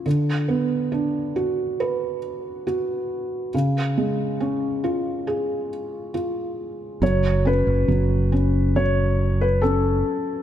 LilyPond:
<<
  \new Staff \with { instrumentName = "Grand piano" } { \time 4/4 \key fis \minor \tempo 4 = 69 r1 | r1 | cis''8 b'4. cis''8. b'16 a'4 | }
  \new Staff \with { instrumentName = "Felt piano" } { \time 4/4 \key fis \minor d8 b8 d'8 fis'8 b'4 fis'4 | cis8 gis8 cis'8 eis'8 gis'4 eis'4 | fis8 cis'8 fis8 cis'8 fis4 cis'4 | }
  \new Staff \with { instrumentName = "Fingered electric bass" } { \clef bass \time 4/4 \key fis \minor r1 | r1 | fis,,8. fis,,16 fis,,2~ fis,,8 r8 | }
>>